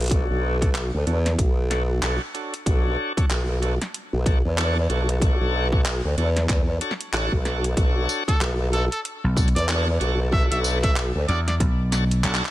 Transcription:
Already playing: wobble bass B1
0.01 closed hi-hat
0.02 closed hi-hat
0.04 closed hi-hat
0.06 closed hi-hat
0.08 closed hi-hat
0.10 tonewheel organ D4 F#4 A4 C#5, kick, closed hi-hat
0.11 closed hi-hat
0.30 wobble bass B1
0.61 tonewheel organ D4 F#4 A4 C#5, kick, closed hi-hat
0.75 clap, closed hi-hat
0.94 wobble bass D2
1.07 wobble bass E2, tonewheel organ D4 F#4 A4 C#5, closed hi-hat
1.26 snare, closed hi-hat
1.38 wobble bass B1, kick, closed hi-hat
1.70 tonewheel organ D4 F#4 A4 C#5, snare, closed hi-hat
2.02 wobble bass B1, tonewheel organ D4 F#4 A4 C#5, clap, closed hi-hat
2.34 tonewheel organ D4 F#4 A4 C#5, closed hi-hat
2.54 closed hi-hat
2.66 wobble bass B1, tonewheel organ D4 F#4 A4 C#5, kick, closed hi-hat
3.17 tonewheel organ D4 F#4 A4 C#5, kick, closed hi-hat
3.30 wobble bass B1, clap, closed hi-hat
3.62 tonewheel organ D4 F#4 A4 C#5, closed hi-hat
3.82 snare, closed hi-hat
3.94 closed hi-hat
4.13 wobble bass B1
4.26 tonewheel organ D4 F#4 A4 C#5, kick, closed hi-hat
4.45 wobble bass E2
4.58 tonewheel organ D4 F#4 A4 C#5, clap, closed hi-hat
4.89 wobble bass B1, tonewheel organ D4 F#4 A4 C#5, closed hi-hat
5.09 closed hi-hat
5.21 tonewheel organ D4 F#4 A4 C#5, kick, closed hi-hat
5.41 wobble bass B1
5.72 tonewheel organ D4 F#4 A4 C#5, kick
5.86 clap, closed hi-hat
6.04 wobble bass D2
6.17 wobble bass E2, tonewheel organ D4 F#4 A4 C#5, closed hi-hat
6.37 snare, closed hi-hat
6.49 wobble bass E2, kick, clap, closed hi-hat
6.81 tonewheel organ D4 F#4 A4 C#5, closed hi-hat
6.91 snare
7.01 closed hi-hat
7.13 wobble bass A1, tonewheel organ D4 F#4 A4 C#5, clap, closed hi-hat
7.32 wobble bass B1, kick
7.45 tonewheel organ D4 F#4 A4 C#5, snare, closed hi-hat
7.64 closed hi-hat
7.77 wobble bass B1, tonewheel organ D4 F#4 A4 C#5, kick, closed hi-hat
8.09 tambourine
8.28 tonewheel organ D4 F#4 A4 C#5, trumpet A4, kick, closed hi-hat
8.41 wobble bass B1, clap, closed hi-hat
8.73 tonewheel organ D4 F#4 A4 C#5, trumpet A4, closed hi-hat
8.92 trumpet A4, closed hi-hat
9.05 closed hi-hat
9.24 slap bass B1
9.36 tonewheel organ D4 F#4 A4 C#5, kick, closed hi-hat, tambourine
9.48 closed hi-hat
9.55 wobble bass E2, trumpet D5, closed hi-hat
9.58 closed hi-hat
9.68 tonewheel organ D4 F#4 A4 C#5, clap, closed hi-hat
10.00 wobble bass B1, tonewheel organ D4 F#4 A4 C#5, closed hi-hat
10.32 tonewheel organ D4 F#4 A4 C#5, trumpet E5, kick
10.51 wobble bass B1, trumpet E5, closed hi-hat
10.64 tambourine
10.83 tonewheel organ D4 F#4 A4 C#5, trumpet E5, kick, closed hi-hat
10.96 clap, closed hi-hat
11.15 wobble bass D2
11.27 slap bass E2, tonewheel organ D4 F#4 A4 C#5, trumpet D5, closed hi-hat
11.47 trumpet D5, snare, closed hi-hat
11.60 slap bass B1, kick, closed hi-hat
11.92 tonewheel organ D4 F#4 A4 C#5, snare, closed hi-hat, tambourine
12.11 closed hi-hat
12.24 slap bass B1, tonewheel organ D4 F#4 A4 C#5, clap, closed hi-hat
12.35 clap
12.45 clap

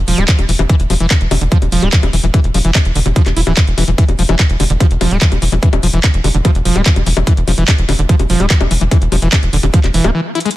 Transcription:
0.08 analog synth bass E1, acid bass F3, open hi-hat
0.18 analog synth bass D1, acid bass G#3, closed hi-hat, high bongo
0.28 acid bass E3, kick, clap, closed hi-hat
0.39 analog synth bass E1, closed hi-hat, high bongo
0.49 analog synth bass E1, acid bass E3, open hi-hat
0.59 analog synth bass E1, acid bass E3, closed hi-hat, high bongo
0.69 acid bass E3, kick, closed hi-hat
0.80 analog synth bass E1, closed hi-hat
0.90 analog synth bass E1, acid bass F3, open hi-hat, high bongo
1.00 analog synth bass E1, acid bass E3, closed hi-hat
1.11 acid bass E3, kick, clap, closed hi-hat, high bongo
1.21 analog synth bass E1, closed hi-hat
1.31 analog synth bass E1, acid bass D3, open hi-hat, high bongo
1.41 analog synth bass E1, acid bass D3, closed hi-hat
1.52 acid bass F3, kick, closed hi-hat
1.62 analog synth bass E1, closed hi-hat, high bongo
1.72 analog synth bass E1, acid bass F3, open hi-hat
1.82 analog synth bass D1, acid bass G#3, closed hi-hat, high bongo
1.93 acid bass E3, kick, clap, closed hi-hat
2.03 analog synth bass E1, closed hi-hat, high bongo
2.13 analog synth bass E1, acid bass E3, open hi-hat
2.24 analog synth bass E1, acid bass E3, closed hi-hat
2.34 acid bass E3, kick, closed hi-hat, high bongo
2.44 analog synth bass E1, closed hi-hat
2.54 analog synth bass E1, acid bass F3, open hi-hat, high bongo
2.65 analog synth bass E1, acid bass E3, closed hi-hat
2.75 acid bass E3, kick, clap, closed hi-hat, high bongo
2.85 analog synth bass E1, closed hi-hat
2.95 analog synth bass E1, acid bass D3, open hi-hat
3.06 analog synth bass E1, acid bass D3, closed hi-hat, high bongo
3.16 acid bass F3, kick, closed hi-hat
3.26 analog synth bass E1, clap, closed hi-hat, high bongo
3.37 analog synth bass E1, acid bass E4, open hi-hat
3.47 analog synth bass D1, acid bass E3, closed hi-hat, high bongo
3.57 acid bass F3, kick, clap, closed hi-hat
3.67 analog synth bass E1, closed hi-hat
3.78 analog synth bass E1, acid bass E3, open hi-hat, high bongo
3.88 analog synth bass E1, acid bass E3, closed hi-hat
3.98 acid bass E3, kick, closed hi-hat
4.08 analog synth bass E1, closed hi-hat, high bongo
4.19 analog synth bass E1, acid bass F3, open hi-hat
4.29 analog synth bass E1, acid bass E3, closed hi-hat, high bongo
4.39 acid bass E3, kick, clap, closed hi-hat
4.50 analog synth bass E1, closed hi-hat
4.60 analog synth bass E1, acid bass D3, open hi-hat, high bongo
4.70 analog synth bass E1, acid bass D3, closed hi-hat
4.80 acid bass F3, kick, closed hi-hat, high bongo
4.91 analog synth bass E1, closed hi-hat
5.01 analog synth bass E1, acid bass F3, open hi-hat, high bongo
5.11 analog synth bass D1, acid bass G#3, closed hi-hat
5.21 acid bass E3, kick, clap, closed hi-hat
5.32 analog synth bass E1, closed hi-hat, high bongo
5.42 analog synth bass E1, acid bass E3, open hi-hat
5.52 analog synth bass E1, acid bass E3, closed hi-hat, high bongo
5.63 acid bass E3, kick, closed hi-hat
5.73 analog synth bass E1, closed hi-hat, high bongo
5.83 analog synth bass E1, acid bass F3, open hi-hat
5.93 analog synth bass E1, acid bass E3, closed hi-hat
6.04 acid bass E3, kick, clap, closed hi-hat, high bongo
6.14 analog synth bass E1, closed hi-hat
6.24 analog synth bass E1, acid bass D3, open hi-hat, high bongo
6.35 analog synth bass E1, acid bass D3, closed hi-hat
6.45 acid bass F3, kick, closed hi-hat, high bongo
6.55 analog synth bass E1, closed hi-hat
6.65 analog synth bass E1, acid bass F3, open hi-hat
6.76 analog synth bass D1, acid bass G#3, closed hi-hat, high bongo
6.86 acid bass E3, kick, clap, closed hi-hat
6.96 analog synth bass E1, closed hi-hat, high bongo
7.06 analog synth bass E1, acid bass E3, open hi-hat
7.17 analog synth bass E1, acid bass E3, closed hi-hat, high bongo
7.27 acid bass E3, kick, closed hi-hat
7.37 analog synth bass E1, closed hi-hat
7.48 analog synth bass E1, acid bass F3, open hi-hat, high bongo
7.58 analog synth bass E1, acid bass E3, closed hi-hat
7.68 acid bass E3, kick, clap, closed hi-hat, high bongo
7.78 analog synth bass E1, closed hi-hat
7.89 analog synth bass E1, acid bass D3, open hi-hat, high bongo
7.99 analog synth bass E1, acid bass D3, closed hi-hat
8.09 acid bass F3, kick, closed hi-hat
8.19 analog synth bass E1, closed hi-hat, high bongo
8.30 analog synth bass E1, acid bass F3, open hi-hat
8.40 analog synth bass D1, acid bass G#3, closed hi-hat, high bongo
8.50 acid bass E3, kick, clap, closed hi-hat
8.61 analog synth bass E1, closed hi-hat, high bongo
8.71 analog synth bass E1, acid bass E3, open hi-hat
8.81 analog synth bass E1, acid bass E3, closed hi-hat
8.91 acid bass E3, kick, closed hi-hat, high bongo
9.02 analog synth bass E1, closed hi-hat
9.12 analog synth bass E1, acid bass F3, open hi-hat, high bongo
9.22 analog synth bass E1, acid bass E3, closed hi-hat
9.32 acid bass E3, kick, clap, closed hi-hat, high bongo
9.43 analog synth bass E1, closed hi-hat
9.53 analog synth bass E1, acid bass D3, open hi-hat
9.63 analog synth bass E1, acid bass D3, closed hi-hat, high bongo
9.74 acid bass F3, kick, closed hi-hat
9.84 analog synth bass E1, clap, closed hi-hat, high bongo
9.94 analog synth bass E1, acid bass E3, open hi-hat
10.04 analog synth bass D1, acid bass B3, closed hi-hat, high bongo
10.15 acid bass E3
10.35 acid bass E4, closed hi-hat
10.40 closed hi-hat
10.45 acid bass G#3, closed hi-hat
10.51 closed hi-hat

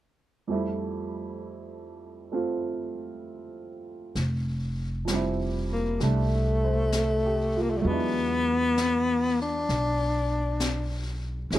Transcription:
0.47 upright piano F2 F3 G3 A3
0.52 upright piano E4
2.32 upright piano A3 C4 F4
4.15 upright bass F1, brush sweep, snare
5.05 upright piano F3 G3, brush sweep, snare, hi-hat pedal
5.13 upright piano C4 E4
5.72 tenor saxophone A#3
6.00 upright bass C2, upright piano G3 A3 D4, tenor saxophone A3, brush sweep, snare
6.64 upright piano C5
6.92 upright piano A4, brush sweep, snare, hi-hat pedal
7.26 upright piano G4
7.56 upright piano F4
7.62 tenor saxophone A#3
7.70 tenor saxophone A3
7.77 tenor saxophone G3 A3
7.81 upright bass E2, upright piano F#3 G#3, brush sweep
7.87 tenor saxophone B3, upright piano B3 D4
7.93 upright piano E4
8.78 brush sweep, snare, hi-hat pedal
9.42 tenor saxophone D4
9.69 upright bass B1, brush sweep, snare
10.60 brush sweep, snare, hi-hat pedal
11.51 upright bass A1, upright piano E3 A3 B3 C#4, brush sweep, snare
11.55 upright piano G#4

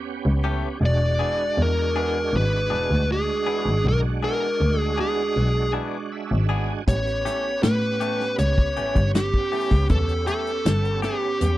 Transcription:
Already playing: tonewheel organ B3 C#4 G4
0.25 double bass C#2
0.44 clean electric guitar E3 A3 C#4 G4
0.79 double bass E1, tonewheel organ G#3 D4 F#4
0.85 lead electric guitar D5
1.19 clean electric guitar E3 B3 D4 G#4
1.58 double bass E2
1.62 lead electric guitar A#4
1.96 clean electric guitar E3 B3 D4 G#4
2.33 double bass G#1, lead electric guitar B4
2.70 double bass E1, clean electric guitar E3 B3 D4 G#4
2.90 double bass D2
3.12 lead electric guitar G#4
3.46 clean electric guitar E3 B3 D4 G#4
3.66 double bass G#1
3.85 double bass B1, lead electric guitar A#4
4.23 clean electric guitar E3 B3 D4 G#4, lead electric guitar A#4
4.61 double bass D2
4.81 lead electric guitar G#4
4.98 clean electric guitar E3 B3 D4 G#4, lead electric guitar G#4
5.36 double bass B1
5.73 clean electric guitar E3 B3 D4 G#4
6.12 tonewheel organ E5
6.31 double bass G#1
6.49 clean electric guitar E3 B3 D4 G#4, tonewheel organ G#5
6.87 double bass A1, tonewheel organ B3 C#4 G4, lead electric guitar C#5, kick, closed hi-hat
7.07 closed hi-hat
7.25 clean electric guitar E3 A3 C#4 G4, snare, closed hi-hat
7.63 double bass A2, lead electric guitar B4, snare, closed hi-hat
8.00 clean electric guitar E3 A3 C#4 G4, closed hi-hat
8.20 snare
8.38 double bass C#2, lead electric guitar C#5, closed hi-hat
8.58 kick
8.77 double bass A1, clean electric guitar E3 A3 C#4 G4, closed hi-hat
8.96 double bass G1, kick, closed hi-hat
9.15 lead electric guitar G4, snare, closed hi-hat
9.34 kick
9.52 clean electric guitar E3 A3 C#4 G4, open hi-hat
9.71 double bass C#2, kick
9.89 double bass E2, lead electric guitar A4, kick, closed hi-hat
10.09 closed hi-hat
10.27 clean electric guitar E3 A3 C#4 G4, lead electric guitar A4, closed hi-hat
10.47 closed hi-hat
10.66 double bass G1, snare, closed hi-hat
10.85 closed hi-hat
11.02 clean electric guitar E3 A3 C#4 G4, lead electric guitar G4, closed hi-hat
11.41 double bass E2, closed hi-hat

